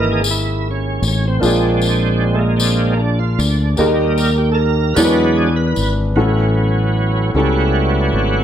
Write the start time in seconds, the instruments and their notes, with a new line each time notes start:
Already playing: fingered electric bass G#1, grand piano G#2 A#3 C#4 E4 G#4, tonewheel organ E3 A#3 D#5
0.12 tonewheel organ G#4
0.24 tambourine
0.31 tonewheel organ E4
0.71 tonewheel organ C#4
1.02 fingered electric bass A1, tambourine
1.08 tonewheel organ C#4
1.28 tonewheel organ C4
1.40 fingered electric bass A#1, grand piano A#2 A#3 D4 F4 G#4, tambourine
1.45 tonewheel organ G#3 C4 D4
1.82 tambourine
1.86 tonewheel organ D4
2.24 tonewheel organ C4
2.34 tonewheel organ A3
2.39 tonewheel organ A#3
2.56 tonewheel organ G#3 C4 D4, tambourine
2.97 tonewheel organ D4
3.19 tonewheel organ F4
3.39 fingered electric bass D2, tonewheel organ D4, tambourine
3.77 fingered electric bass D#2, grand piano D#3 A#3 D#4 G4 G#4, tonewheel organ G3 A#3 D#4, tambourine
3.86 grand piano A#4
4.18 tonewheel organ A#4, tambourine
4.38 tonewheel organ G4
4.52 tonewheel organ A4 A#4
4.94 fingered electric bass E2, grand piano E3 D4 E4 G#4 A#4, tonewheel organ F#3 G#3 D4 B4, tambourine
5.04 grand piano B4
5.37 tonewheel organ G#4
5.56 tonewheel organ B4
5.76 fingered electric bass G#1, tambourine
6.16 fingered electric bass A1, grand piano A2 C#4 E4 F#4 A4, tonewheel organ F#3 B3 C#4
7.34 fingered electric bass C#2, grand piano C#3 C#4 E4 G4 A4, tonewheel organ G3 A3 B3 C#4 F#4
8.13 fingered electric bass G#1